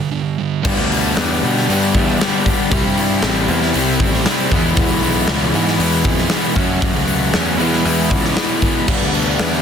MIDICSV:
0, 0, Header, 1, 7, 480
1, 0, Start_track
1, 0, Tempo, 514580
1, 605, Time_signature, 4, 2, 24, 8
1, 8973, End_track
2, 0, Start_track
2, 0, Title_t, "String machine"
2, 0, Program_c, 0, 50
2, 8289, Note_on_c, 0, 71, 81
2, 8290, Note_on_c, 0, 74, 79
2, 8291, Note_on_c, 0, 67, 85
2, 8296, Note_on_c, 0, 83, 96
2, 8973, Note_off_c, 0, 67, 0
2, 8973, Note_off_c, 0, 71, 0
2, 8973, Note_off_c, 0, 74, 0
2, 8973, Note_off_c, 0, 83, 0
2, 8973, End_track
3, 0, Start_track
3, 0, Title_t, "Distorted electric guitar"
3, 0, Program_c, 1, 30
3, 608, Note_on_c, 1, 43, 104
3, 618, Note_on_c, 1, 50, 100
3, 623, Note_on_c, 1, 55, 97
3, 627, Note_on_c, 1, 59, 109
3, 633, Note_on_c, 1, 62, 115
3, 642, Note_on_c, 1, 67, 100
3, 859, Note_off_c, 1, 62, 0
3, 862, Note_off_c, 1, 67, 0
3, 866, Note_on_c, 1, 67, 69
3, 870, Note_off_c, 1, 59, 0
3, 870, Note_on_c, 1, 62, 71
3, 881, Note_on_c, 1, 59, 67
3, 884, Note_off_c, 1, 55, 0
3, 888, Note_on_c, 1, 55, 63
3, 1089, Note_off_c, 1, 43, 0
3, 1094, Note_off_c, 1, 50, 0
3, 1095, Note_off_c, 1, 55, 0
3, 1098, Note_off_c, 1, 59, 0
3, 1099, Note_on_c, 1, 55, 75
3, 1106, Note_off_c, 1, 62, 0
3, 1109, Note_on_c, 1, 59, 89
3, 1117, Note_on_c, 1, 62, 80
3, 1120, Note_off_c, 1, 67, 0
3, 1123, Note_on_c, 1, 67, 89
3, 1333, Note_off_c, 1, 67, 0
3, 1344, Note_off_c, 1, 62, 0
3, 1344, Note_on_c, 1, 67, 69
3, 1353, Note_off_c, 1, 59, 0
3, 1356, Note_on_c, 1, 62, 68
3, 1364, Note_on_c, 1, 59, 69
3, 1366, Note_off_c, 1, 55, 0
3, 1377, Note_on_c, 1, 55, 68
3, 1581, Note_on_c, 1, 43, 102
3, 1585, Note_off_c, 1, 55, 0
3, 1591, Note_off_c, 1, 59, 0
3, 1592, Note_off_c, 1, 62, 0
3, 1594, Note_on_c, 1, 50, 102
3, 1597, Note_on_c, 1, 55, 100
3, 1598, Note_off_c, 1, 67, 0
3, 1602, Note_on_c, 1, 59, 102
3, 1603, Note_on_c, 1, 62, 111
3, 1609, Note_on_c, 1, 67, 108
3, 2046, Note_off_c, 1, 55, 0
3, 2057, Note_off_c, 1, 59, 0
3, 2058, Note_on_c, 1, 55, 85
3, 2065, Note_off_c, 1, 62, 0
3, 2068, Note_on_c, 1, 59, 73
3, 2069, Note_off_c, 1, 67, 0
3, 2076, Note_on_c, 1, 62, 88
3, 2081, Note_on_c, 1, 67, 100
3, 2285, Note_off_c, 1, 67, 0
3, 2296, Note_off_c, 1, 43, 0
3, 2296, Note_on_c, 1, 67, 74
3, 2297, Note_off_c, 1, 62, 0
3, 2303, Note_off_c, 1, 50, 0
3, 2304, Note_off_c, 1, 59, 0
3, 2308, Note_on_c, 1, 62, 73
3, 2315, Note_on_c, 1, 59, 71
3, 2317, Note_off_c, 1, 55, 0
3, 2328, Note_on_c, 1, 55, 71
3, 2519, Note_off_c, 1, 67, 0
3, 2521, Note_off_c, 1, 55, 0
3, 2523, Note_on_c, 1, 48, 98
3, 2525, Note_off_c, 1, 62, 0
3, 2529, Note_off_c, 1, 59, 0
3, 2533, Note_on_c, 1, 55, 93
3, 2542, Note_on_c, 1, 60, 106
3, 2554, Note_on_c, 1, 64, 104
3, 2772, Note_off_c, 1, 64, 0
3, 2776, Note_on_c, 1, 64, 72
3, 2788, Note_off_c, 1, 60, 0
3, 2799, Note_on_c, 1, 60, 70
3, 2801, Note_off_c, 1, 55, 0
3, 2812, Note_on_c, 1, 55, 59
3, 3007, Note_off_c, 1, 48, 0
3, 3017, Note_on_c, 1, 48, 76
3, 3026, Note_off_c, 1, 55, 0
3, 3030, Note_off_c, 1, 60, 0
3, 3037, Note_on_c, 1, 55, 88
3, 3042, Note_on_c, 1, 60, 84
3, 3045, Note_off_c, 1, 64, 0
3, 3049, Note_on_c, 1, 64, 91
3, 3245, Note_off_c, 1, 64, 0
3, 3256, Note_on_c, 1, 64, 83
3, 3267, Note_off_c, 1, 60, 0
3, 3277, Note_off_c, 1, 55, 0
3, 3279, Note_on_c, 1, 60, 73
3, 3288, Note_on_c, 1, 55, 62
3, 3494, Note_off_c, 1, 48, 0
3, 3507, Note_on_c, 1, 48, 94
3, 3512, Note_off_c, 1, 55, 0
3, 3522, Note_off_c, 1, 60, 0
3, 3524, Note_on_c, 1, 55, 100
3, 3529, Note_off_c, 1, 64, 0
3, 3534, Note_on_c, 1, 60, 105
3, 3540, Note_on_c, 1, 64, 96
3, 3973, Note_off_c, 1, 48, 0
3, 3977, Note_off_c, 1, 55, 0
3, 3984, Note_on_c, 1, 48, 85
3, 3989, Note_off_c, 1, 60, 0
3, 3989, Note_on_c, 1, 55, 86
3, 3996, Note_off_c, 1, 64, 0
3, 4000, Note_on_c, 1, 60, 86
3, 4007, Note_on_c, 1, 64, 85
3, 4203, Note_off_c, 1, 48, 0
3, 4205, Note_off_c, 1, 55, 0
3, 4210, Note_off_c, 1, 64, 0
3, 4211, Note_off_c, 1, 60, 0
3, 4221, Note_on_c, 1, 64, 96
3, 4235, Note_on_c, 1, 59, 90
3, 4242, Note_on_c, 1, 56, 87
3, 4257, Note_on_c, 1, 52, 75
3, 4452, Note_off_c, 1, 52, 0
3, 4463, Note_off_c, 1, 56, 0
3, 4464, Note_on_c, 1, 52, 97
3, 4470, Note_off_c, 1, 59, 0
3, 4474, Note_on_c, 1, 56, 108
3, 4475, Note_off_c, 1, 64, 0
3, 4481, Note_on_c, 1, 59, 104
3, 4486, Note_on_c, 1, 64, 119
3, 4677, Note_off_c, 1, 64, 0
3, 4688, Note_on_c, 1, 64, 83
3, 4695, Note_off_c, 1, 59, 0
3, 4706, Note_on_c, 1, 59, 73
3, 4710, Note_off_c, 1, 56, 0
3, 4722, Note_on_c, 1, 56, 64
3, 4930, Note_off_c, 1, 52, 0
3, 4941, Note_on_c, 1, 52, 90
3, 4943, Note_off_c, 1, 56, 0
3, 4950, Note_off_c, 1, 59, 0
3, 4954, Note_on_c, 1, 56, 80
3, 4957, Note_off_c, 1, 64, 0
3, 4961, Note_on_c, 1, 59, 78
3, 4968, Note_on_c, 1, 64, 88
3, 5162, Note_off_c, 1, 64, 0
3, 5173, Note_off_c, 1, 59, 0
3, 5173, Note_on_c, 1, 64, 75
3, 5184, Note_on_c, 1, 59, 72
3, 5190, Note_off_c, 1, 56, 0
3, 5201, Note_on_c, 1, 56, 62
3, 5394, Note_off_c, 1, 52, 0
3, 5406, Note_on_c, 1, 52, 101
3, 5412, Note_off_c, 1, 56, 0
3, 5415, Note_off_c, 1, 59, 0
3, 5423, Note_on_c, 1, 56, 100
3, 5426, Note_off_c, 1, 64, 0
3, 5426, Note_on_c, 1, 59, 104
3, 5438, Note_on_c, 1, 64, 113
3, 5869, Note_off_c, 1, 52, 0
3, 5880, Note_on_c, 1, 52, 76
3, 5883, Note_off_c, 1, 56, 0
3, 5892, Note_off_c, 1, 59, 0
3, 5894, Note_on_c, 1, 56, 78
3, 5903, Note_on_c, 1, 59, 91
3, 5904, Note_off_c, 1, 64, 0
3, 5915, Note_on_c, 1, 64, 81
3, 6110, Note_off_c, 1, 52, 0
3, 6112, Note_off_c, 1, 64, 0
3, 6116, Note_on_c, 1, 66, 104
3, 6117, Note_off_c, 1, 56, 0
3, 6121, Note_off_c, 1, 59, 0
3, 6129, Note_on_c, 1, 61, 96
3, 6141, Note_on_c, 1, 57, 87
3, 6151, Note_on_c, 1, 54, 80
3, 6346, Note_off_c, 1, 54, 0
3, 6354, Note_off_c, 1, 57, 0
3, 6357, Note_on_c, 1, 54, 108
3, 6364, Note_off_c, 1, 61, 0
3, 6365, Note_on_c, 1, 57, 101
3, 6369, Note_off_c, 1, 66, 0
3, 6375, Note_on_c, 1, 61, 113
3, 6380, Note_on_c, 1, 66, 123
3, 6570, Note_off_c, 1, 66, 0
3, 6581, Note_on_c, 1, 66, 80
3, 6589, Note_off_c, 1, 61, 0
3, 6600, Note_on_c, 1, 61, 71
3, 6606, Note_off_c, 1, 57, 0
3, 6617, Note_on_c, 1, 57, 65
3, 6819, Note_off_c, 1, 54, 0
3, 6829, Note_off_c, 1, 57, 0
3, 6830, Note_on_c, 1, 54, 82
3, 6840, Note_on_c, 1, 57, 87
3, 6846, Note_off_c, 1, 61, 0
3, 6848, Note_off_c, 1, 66, 0
3, 6857, Note_on_c, 1, 61, 85
3, 6859, Note_on_c, 1, 66, 86
3, 7059, Note_off_c, 1, 66, 0
3, 7063, Note_off_c, 1, 54, 0
3, 7063, Note_on_c, 1, 64, 97
3, 7069, Note_off_c, 1, 57, 0
3, 7071, Note_off_c, 1, 61, 0
3, 7075, Note_on_c, 1, 59, 81
3, 7082, Note_on_c, 1, 56, 89
3, 7093, Note_on_c, 1, 52, 77
3, 7294, Note_off_c, 1, 52, 0
3, 7305, Note_off_c, 1, 56, 0
3, 7306, Note_on_c, 1, 52, 95
3, 7313, Note_off_c, 1, 59, 0
3, 7317, Note_on_c, 1, 56, 96
3, 7322, Note_off_c, 1, 64, 0
3, 7324, Note_on_c, 1, 59, 101
3, 7333, Note_on_c, 1, 64, 109
3, 7769, Note_off_c, 1, 52, 0
3, 7780, Note_on_c, 1, 52, 78
3, 7785, Note_off_c, 1, 56, 0
3, 7796, Note_on_c, 1, 56, 90
3, 7798, Note_off_c, 1, 59, 0
3, 7801, Note_off_c, 1, 64, 0
3, 7809, Note_on_c, 1, 59, 84
3, 7812, Note_on_c, 1, 64, 83
3, 8011, Note_off_c, 1, 64, 0
3, 8022, Note_off_c, 1, 59, 0
3, 8022, Note_on_c, 1, 64, 73
3, 8033, Note_on_c, 1, 59, 74
3, 8038, Note_off_c, 1, 56, 0
3, 8049, Note_on_c, 1, 56, 60
3, 8256, Note_off_c, 1, 52, 0
3, 8257, Note_off_c, 1, 64, 0
3, 8263, Note_off_c, 1, 59, 0
3, 8266, Note_on_c, 1, 43, 95
3, 8271, Note_off_c, 1, 56, 0
3, 8276, Note_on_c, 1, 50, 105
3, 8281, Note_on_c, 1, 55, 102
3, 8288, Note_on_c, 1, 59, 99
3, 8292, Note_on_c, 1, 62, 102
3, 8498, Note_off_c, 1, 62, 0
3, 8509, Note_on_c, 1, 62, 77
3, 8516, Note_off_c, 1, 59, 0
3, 8527, Note_on_c, 1, 59, 72
3, 8534, Note_off_c, 1, 55, 0
3, 8538, Note_on_c, 1, 55, 63
3, 8733, Note_off_c, 1, 50, 0
3, 8745, Note_on_c, 1, 50, 78
3, 8752, Note_off_c, 1, 43, 0
3, 8758, Note_off_c, 1, 59, 0
3, 8760, Note_off_c, 1, 55, 0
3, 8764, Note_off_c, 1, 62, 0
3, 8764, Note_on_c, 1, 55, 85
3, 8769, Note_on_c, 1, 59, 81
3, 8775, Note_on_c, 1, 62, 87
3, 8973, Note_off_c, 1, 50, 0
3, 8973, Note_off_c, 1, 55, 0
3, 8973, Note_off_c, 1, 59, 0
3, 8973, Note_off_c, 1, 62, 0
3, 8973, End_track
4, 0, Start_track
4, 0, Title_t, "Distorted electric guitar"
4, 0, Program_c, 2, 30
4, 98, Note_on_c, 2, 43, 76
4, 104, Note_on_c, 2, 50, 81
4, 327, Note_off_c, 2, 43, 0
4, 330, Note_off_c, 2, 50, 0
4, 356, Note_on_c, 2, 43, 73
4, 357, Note_on_c, 2, 50, 71
4, 569, Note_off_c, 2, 43, 0
4, 578, Note_off_c, 2, 50, 0
4, 829, Note_on_c, 2, 62, 74
4, 1069, Note_on_c, 2, 50, 81
4, 1090, Note_off_c, 2, 62, 0
4, 1314, Note_on_c, 2, 62, 81
4, 1560, Note_off_c, 2, 50, 0
4, 1780, Note_off_c, 2, 62, 0
4, 1791, Note_on_c, 2, 62, 76
4, 1809, Note_on_c, 2, 59, 67
4, 1822, Note_on_c, 2, 55, 61
4, 2022, Note_on_c, 2, 43, 93
4, 2032, Note_off_c, 2, 55, 0
4, 2035, Note_on_c, 2, 50, 91
4, 2038, Note_off_c, 2, 59, 0
4, 2044, Note_off_c, 2, 62, 0
4, 2502, Note_off_c, 2, 43, 0
4, 2509, Note_off_c, 2, 50, 0
4, 3723, Note_on_c, 2, 64, 83
4, 3736, Note_on_c, 2, 60, 70
4, 3746, Note_on_c, 2, 55, 66
4, 3963, Note_off_c, 2, 55, 0
4, 3970, Note_off_c, 2, 60, 0
4, 3983, Note_off_c, 2, 64, 0
4, 5638, Note_on_c, 2, 64, 81
4, 5655, Note_on_c, 2, 59, 72
4, 5673, Note_on_c, 2, 56, 60
4, 5866, Note_off_c, 2, 56, 0
4, 5882, Note_off_c, 2, 59, 0
4, 5887, Note_off_c, 2, 64, 0
4, 7550, Note_on_c, 2, 64, 73
4, 7564, Note_on_c, 2, 59, 75
4, 7576, Note_on_c, 2, 56, 58
4, 7800, Note_off_c, 2, 56, 0
4, 7807, Note_off_c, 2, 59, 0
4, 7818, Note_off_c, 2, 64, 0
4, 8973, End_track
5, 0, Start_track
5, 0, Title_t, "Overdriven electric guitar"
5, 0, Program_c, 3, 29
5, 4214, Note_on_c, 3, 40, 88
5, 4225, Note_on_c, 3, 47, 106
5, 5157, Note_off_c, 3, 40, 0
5, 5161, Note_on_c, 3, 52, 106
5, 5162, Note_off_c, 3, 47, 0
5, 5181, Note_on_c, 3, 47, 82
5, 5196, Note_on_c, 3, 40, 82
5, 6105, Note_off_c, 3, 40, 0
5, 6109, Note_on_c, 3, 42, 93
5, 6110, Note_off_c, 3, 52, 0
5, 6120, Note_off_c, 3, 47, 0
5, 6128, Note_on_c, 3, 49, 98
5, 7062, Note_off_c, 3, 42, 0
5, 7070, Note_on_c, 3, 40, 101
5, 7072, Note_off_c, 3, 49, 0
5, 7090, Note_on_c, 3, 47, 107
5, 8021, Note_off_c, 3, 40, 0
5, 8031, Note_off_c, 3, 47, 0
5, 8045, Note_on_c, 3, 52, 84
5, 8061, Note_on_c, 3, 47, 87
5, 8077, Note_on_c, 3, 40, 73
5, 8269, Note_off_c, 3, 52, 0
5, 8270, Note_off_c, 3, 40, 0
5, 8277, Note_off_c, 3, 47, 0
5, 8973, End_track
6, 0, Start_track
6, 0, Title_t, "Picked electric bass"
6, 0, Program_c, 4, 34
6, 608, Note_on_c, 4, 43, 95
6, 720, Note_off_c, 4, 43, 0
6, 731, Note_on_c, 4, 38, 99
6, 1067, Note_off_c, 4, 38, 0
6, 1090, Note_on_c, 4, 40, 101
6, 1314, Note_off_c, 4, 40, 0
6, 1334, Note_on_c, 4, 47, 102
6, 1557, Note_off_c, 4, 47, 0
6, 1577, Note_on_c, 4, 43, 108
6, 1817, Note_on_c, 4, 40, 90
6, 1831, Note_off_c, 4, 43, 0
6, 2039, Note_off_c, 4, 40, 0
6, 2539, Note_on_c, 4, 36, 103
6, 2648, Note_off_c, 4, 36, 0
6, 2653, Note_on_c, 4, 43, 91
6, 2989, Note_off_c, 4, 43, 0
6, 3010, Note_on_c, 4, 33, 99
6, 3235, Note_off_c, 4, 33, 0
6, 3249, Note_on_c, 4, 40, 104
6, 3475, Note_off_c, 4, 40, 0
6, 3494, Note_on_c, 4, 36, 107
6, 3733, Note_off_c, 4, 36, 0
6, 3733, Note_on_c, 4, 33, 97
6, 3957, Note_off_c, 4, 33, 0
6, 4213, Note_on_c, 4, 40, 102
6, 4549, Note_off_c, 4, 40, 0
6, 4572, Note_on_c, 4, 35, 95
6, 4908, Note_off_c, 4, 35, 0
6, 4929, Note_on_c, 4, 37, 100
6, 5154, Note_off_c, 4, 37, 0
6, 5169, Note_on_c, 4, 44, 97
6, 5394, Note_off_c, 4, 44, 0
6, 5402, Note_on_c, 4, 40, 105
6, 5641, Note_off_c, 4, 40, 0
6, 5641, Note_on_c, 4, 41, 99
6, 5870, Note_off_c, 4, 41, 0
6, 6121, Note_on_c, 4, 42, 99
6, 6461, Note_off_c, 4, 42, 0
6, 6487, Note_on_c, 4, 37, 96
6, 6824, Note_off_c, 4, 37, 0
6, 6845, Note_on_c, 4, 40, 103
6, 7070, Note_off_c, 4, 40, 0
6, 7086, Note_on_c, 4, 40, 101
6, 7311, Note_off_c, 4, 40, 0
6, 7323, Note_on_c, 4, 40, 100
6, 7565, Note_on_c, 4, 37, 93
6, 7579, Note_off_c, 4, 40, 0
6, 7789, Note_off_c, 4, 37, 0
6, 8285, Note_on_c, 4, 43, 103
6, 8396, Note_off_c, 4, 43, 0
6, 8411, Note_on_c, 4, 38, 92
6, 8743, Note_off_c, 4, 38, 0
6, 8765, Note_on_c, 4, 40, 98
6, 8973, Note_off_c, 4, 40, 0
6, 8973, End_track
7, 0, Start_track
7, 0, Title_t, "Drums"
7, 603, Note_on_c, 9, 49, 127
7, 606, Note_on_c, 9, 36, 127
7, 697, Note_off_c, 9, 49, 0
7, 699, Note_off_c, 9, 36, 0
7, 857, Note_on_c, 9, 46, 78
7, 950, Note_off_c, 9, 46, 0
7, 1090, Note_on_c, 9, 46, 99
7, 1092, Note_on_c, 9, 38, 122
7, 1183, Note_off_c, 9, 46, 0
7, 1185, Note_off_c, 9, 38, 0
7, 1339, Note_on_c, 9, 46, 70
7, 1432, Note_off_c, 9, 46, 0
7, 1465, Note_on_c, 9, 38, 35
7, 1558, Note_off_c, 9, 38, 0
7, 1586, Note_on_c, 9, 46, 97
7, 1679, Note_off_c, 9, 46, 0
7, 1815, Note_on_c, 9, 36, 97
7, 1820, Note_on_c, 9, 46, 73
7, 1909, Note_off_c, 9, 36, 0
7, 1913, Note_off_c, 9, 46, 0
7, 2064, Note_on_c, 9, 46, 87
7, 2065, Note_on_c, 9, 38, 115
7, 2157, Note_off_c, 9, 46, 0
7, 2159, Note_off_c, 9, 38, 0
7, 2295, Note_on_c, 9, 36, 89
7, 2303, Note_on_c, 9, 46, 69
7, 2388, Note_off_c, 9, 36, 0
7, 2396, Note_off_c, 9, 46, 0
7, 2532, Note_on_c, 9, 46, 93
7, 2533, Note_on_c, 9, 36, 118
7, 2626, Note_off_c, 9, 36, 0
7, 2626, Note_off_c, 9, 46, 0
7, 2775, Note_on_c, 9, 46, 68
7, 2868, Note_off_c, 9, 46, 0
7, 3007, Note_on_c, 9, 46, 93
7, 3009, Note_on_c, 9, 38, 127
7, 3100, Note_off_c, 9, 46, 0
7, 3102, Note_off_c, 9, 38, 0
7, 3249, Note_on_c, 9, 46, 64
7, 3342, Note_off_c, 9, 46, 0
7, 3381, Note_on_c, 9, 38, 33
7, 3475, Note_off_c, 9, 38, 0
7, 3489, Note_on_c, 9, 46, 88
7, 3583, Note_off_c, 9, 46, 0
7, 3731, Note_on_c, 9, 36, 97
7, 3737, Note_on_c, 9, 46, 73
7, 3825, Note_off_c, 9, 36, 0
7, 3830, Note_off_c, 9, 46, 0
7, 3859, Note_on_c, 9, 38, 37
7, 3952, Note_off_c, 9, 38, 0
7, 3970, Note_on_c, 9, 46, 93
7, 3972, Note_on_c, 9, 38, 113
7, 4064, Note_off_c, 9, 46, 0
7, 4065, Note_off_c, 9, 38, 0
7, 4212, Note_on_c, 9, 36, 90
7, 4221, Note_on_c, 9, 46, 70
7, 4306, Note_off_c, 9, 36, 0
7, 4314, Note_off_c, 9, 46, 0
7, 4447, Note_on_c, 9, 46, 94
7, 4450, Note_on_c, 9, 36, 119
7, 4540, Note_off_c, 9, 46, 0
7, 4544, Note_off_c, 9, 36, 0
7, 4691, Note_on_c, 9, 46, 79
7, 4785, Note_off_c, 9, 46, 0
7, 4922, Note_on_c, 9, 38, 125
7, 5015, Note_off_c, 9, 38, 0
7, 5167, Note_on_c, 9, 46, 74
7, 5260, Note_off_c, 9, 46, 0
7, 5296, Note_on_c, 9, 38, 36
7, 5390, Note_off_c, 9, 38, 0
7, 5410, Note_on_c, 9, 46, 97
7, 5503, Note_off_c, 9, 46, 0
7, 5640, Note_on_c, 9, 46, 79
7, 5643, Note_on_c, 9, 36, 94
7, 5733, Note_off_c, 9, 46, 0
7, 5737, Note_off_c, 9, 36, 0
7, 5760, Note_on_c, 9, 38, 37
7, 5853, Note_off_c, 9, 38, 0
7, 5873, Note_on_c, 9, 46, 95
7, 5875, Note_on_c, 9, 38, 108
7, 5966, Note_off_c, 9, 46, 0
7, 5968, Note_off_c, 9, 38, 0
7, 6113, Note_on_c, 9, 46, 68
7, 6121, Note_on_c, 9, 36, 88
7, 6207, Note_off_c, 9, 46, 0
7, 6214, Note_off_c, 9, 36, 0
7, 6363, Note_on_c, 9, 36, 127
7, 6364, Note_on_c, 9, 46, 98
7, 6456, Note_off_c, 9, 36, 0
7, 6458, Note_off_c, 9, 46, 0
7, 6601, Note_on_c, 9, 46, 69
7, 6695, Note_off_c, 9, 46, 0
7, 6842, Note_on_c, 9, 46, 92
7, 6844, Note_on_c, 9, 38, 127
7, 6935, Note_off_c, 9, 46, 0
7, 6937, Note_off_c, 9, 38, 0
7, 7090, Note_on_c, 9, 46, 63
7, 7183, Note_off_c, 9, 46, 0
7, 7210, Note_on_c, 9, 38, 35
7, 7304, Note_off_c, 9, 38, 0
7, 7326, Note_on_c, 9, 46, 89
7, 7420, Note_off_c, 9, 46, 0
7, 7565, Note_on_c, 9, 36, 90
7, 7575, Note_on_c, 9, 46, 68
7, 7659, Note_off_c, 9, 36, 0
7, 7669, Note_off_c, 9, 46, 0
7, 7689, Note_on_c, 9, 38, 37
7, 7782, Note_off_c, 9, 38, 0
7, 7803, Note_on_c, 9, 46, 91
7, 7805, Note_on_c, 9, 38, 114
7, 7897, Note_off_c, 9, 46, 0
7, 7898, Note_off_c, 9, 38, 0
7, 8039, Note_on_c, 9, 46, 66
7, 8042, Note_on_c, 9, 36, 93
7, 8133, Note_off_c, 9, 46, 0
7, 8136, Note_off_c, 9, 36, 0
7, 8284, Note_on_c, 9, 57, 115
7, 8285, Note_on_c, 9, 36, 119
7, 8377, Note_off_c, 9, 57, 0
7, 8378, Note_off_c, 9, 36, 0
7, 8527, Note_on_c, 9, 46, 75
7, 8620, Note_off_c, 9, 46, 0
7, 8762, Note_on_c, 9, 46, 98
7, 8764, Note_on_c, 9, 38, 127
7, 8855, Note_off_c, 9, 46, 0
7, 8857, Note_off_c, 9, 38, 0
7, 8973, End_track
0, 0, End_of_file